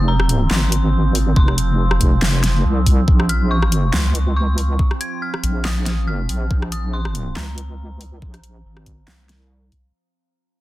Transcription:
0.00 0.49 F1 loud
0.00 9.98 F3 medium
0.00 9.98 C4 medium
0.08 0.52 A#5 loud
0.20 cross-stick medium
0.29 closed hi-hat medium
0.51 1.35 G#1 loud
0.51 1.11 C6 loud
0.51 snare loud
0.51 clap medium
0.72 closed hi-hat medium
1.15 open hi-hat medium
1.36 2.63 F1 loud
1.36 2.18 C6 medium
1.36 kick loud
1.48 cross-stick medium
1.58 closed hi-hat medium
1.91 cross-stick medium
2.01 kick medium
2.01 closed hi-hat medium
2.22 snare loud
2.22 clap medium
2.44 snare medium
2.44 closed hi-hat medium
2.65 3.06 C2 loud
2.86 kick medium
2.86 open hi-hat medium
3.08 3.92 A#1 loud
3.08 kick loud
3.20 cross-stick medium
3.29 3.51 F6 loud
3.29 closed hi-hat medium
3.51 3.95 C#6 loud
3.62 cross-stick medium
3.72 closed hi-hat medium
3.94 4.78 C#2 loud
3.94 4.38 C6 loud
3.94 snare loud
3.94 clap medium
4.15 closed hi-hat medium
4.36 4.76 C#6 loud
4.58 open hi-hat loud
4.79 kick loud
4.91 cross-stick medium
5.01 5.23 G#6 loud
5.01 closed hi-hat medium
5.22 5.66 F6 loud
5.34 cross-stick medium
5.43 6.28 A#1 loud
5.43 closed hi-hat medium
5.65 6.09 D#6 loud
5.65 snare loud
5.65 clap medium
5.86 snare medium
5.86 closed hi-hat medium
6.07 6.48 F6 loud
6.29 6.49 A#1 loud
6.29 open hi-hat loud
6.51 7.35 A#1 loud
6.51 kick loud
6.62 cross-stick medium
6.72 6.94 D#6 loud
6.72 closed hi-hat medium
6.93 7.38 C6 loud
7.05 cross-stick medium
7.15 closed hi-hat medium
7.36 8.21 C#2 medium
7.36 9.47 A#5 medium
7.36 snare loud
7.36 clap medium
7.58 closed hi-hat medium
8.01 open hi-hat loud
8.22 8.63 A#1 loud
8.22 kick loud
8.34 cross-stick medium
8.34 closed hi-hat soft
8.44 closed hi-hat medium
8.65 9.06 G#1 loud
8.77 cross-stick medium
8.86 kick medium
8.86 closed hi-hat medium
9.08 9.92 C2 loud
9.08 snare loud
9.08 clap medium
9.29 snare medium
9.29 closed hi-hat medium
9.72 kick medium
9.72 open hi-hat loud

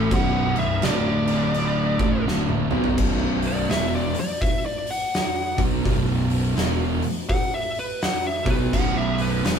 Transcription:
0.00 0.10 A2 medium
0.00 0.10 E3 medium
0.00 0.10 A3 medium
0.00 0.14 A4 medium
0.11 0.53 B0 loud
0.11 0.54 B1 medium
0.11 0.55 F#2 loud
0.11 0.55 B2 medium
0.11 0.58 F#5 loud
0.11 kick loud
0.11 crash medium
0.56 0.81 B0 medium
0.56 0.78 B1 medium
0.56 0.78 F#2 medium
0.56 0.85 E5 medium
0.56 crash medium
0.82 1.95 D1 loud
0.82 1.98 D2 loud
0.82 1.98 A2 loud
0.82 1.98 D3 loud
0.82 2.23 D5 medium
0.82 snare loud
0.82 crash medium
1.27 crash medium
1.54 crash medium
1.99 2.25 A1 medium
1.99 2.26 A2 medium
1.99 2.26 E3 loud
1.99 2.26 A3 loud
1.99 kick loud
1.99 crash medium
2.26 2.68 D1 loud
2.26 2.70 D2 loud
2.26 2.70 A2 loud
2.26 2.71 D3 loud
2.26 snare medium
2.49 high tom medium
2.71 2.96 B1 loud
2.71 2.98 B2 loud
2.71 2.98 F#3 loud
2.71 2.98 B3 loud
2.71 mid tom medium
2.84 floor tom loud
2.98 3.66 B0 medium
2.98 3.69 B1 medium
2.98 3.70 F#2 loud
2.98 3.70 B2 medium
2.98 kick loud
2.98 crash loud
3.42 open hi-hat medium
3.47 3.70 D5 loud
3.70 4.12 E1 medium
3.70 4.14 E2 medium
3.70 4.14 B2 loud
3.70 4.14 E3 loud
3.70 3.94 E5 medium
3.70 snare loud
3.70 open hi-hat medium
3.95 4.18 D5 medium
4.14 open hi-hat medium
4.20 4.42 D5 loud
4.42 4.65 E5 medium
4.42 kick loud
4.42 open hi-hat medium
4.66 4.89 D5 medium
4.86 open hi-hat medium
4.91 5.60 F#5 medium
5.14 snare loud
5.14 open hi-hat medium
5.58 5.84 B1 loud
5.58 5.84 B2 medium
5.58 5.85 F#3 medium
5.58 5.85 B3 loud
5.58 kick loud
5.58 open hi-hat medium
5.85 6.53 B0 loud
5.85 6.56 B1 medium
5.85 6.57 F#2 medium
5.85 6.56 B2 medium
5.85 kick loud
5.85 open hi-hat medium
6.30 open hi-hat medium
6.56 6.99 E1 medium
6.56 7.01 E2 loud
6.56 7.01 B2 loud
6.56 7.01 E3 loud
6.56 snare loud
6.56 open hi-hat medium
7.02 open hi-hat medium
7.29 7.52 F#5 loud
7.29 kick loud
7.29 open hi-hat medium
7.54 7.77 E5 medium
7.75 open hi-hat medium
7.79 8.01 B4 medium
8.01 8.25 F#5 loud
8.01 snare loud
8.01 open hi-hat medium
8.27 8.49 E5 medium
8.46 8.71 B1 medium
8.46 8.72 B2 medium
8.46 8.72 F#3 loud
8.46 8.73 B3 loud
8.46 8.72 B4 loud
8.46 kick loud
8.46 open hi-hat medium
8.73 9.41 B0 loud
8.73 9.44 B1 medium
8.73 9.44 F#2 medium
8.73 9.44 B2 medium
8.73 8.96 F#5 loud
8.73 kick loud
8.73 crash loud
8.97 9.20 E5 loud
9.18 9.44 B4 loud
9.18 open hi-hat medium
9.44 9.59 E1 medium
9.44 9.59 E2 medium
9.44 9.59 B2 loud
9.44 9.59 E3 loud
9.44 9.59 B4 loud
9.44 snare loud
9.44 open hi-hat loud

